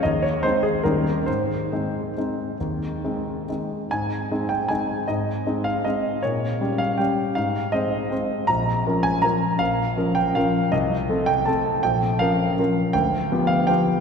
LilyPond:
\new Staff \with { instrumentName = "Grand piano" } { \time 3/4 \key aes \major \tempo 4 = 158 << { ees''8 des''8 c''8 aes'8 bes'4 | c''2.~ | c''2 r4 | aes''4. g''8 aes''4 |
ees''4. f''8 ees''4 | des''4. f''8 g''4 | f''4 ees''2 | bes''4. aes''8 bes''4 |
f''4. g''8 f''4 | ees''4. g''8 a''4 | g''4 f''2 | \key g \mixolydian g''4. f''8 g''4 | } \\ { ees,4 <aes c' ees'>4 <ees, g des' ees'>4 | aes,4 <aes c' ees'>4 <aes c' ees'>4 | ees,4 <aes c' ees'>4 <aes c' ees'>4 | aes,4 <aes c' ees'>4 <aes c' ees'>4 |
aes,4 <aes c' ees'>4 <aes c' ees'>4 | bes,4 <g des' g'>4 <g des' g'>4 | aes,4 <aes c' c''>4 <aes c' c''>4 | bes,,4 <f des' bes'>4 <f des' bes'>4 |
bes,,4 <f des' bes'>4 <f des' bes'>4 | c,4 <a c' a'>4 <a c' a'>4 | bes,,4 <f des' bes'>4 <f des' bes'>4 | d,4 <f b g'>4 <f b g'>4 | } >> }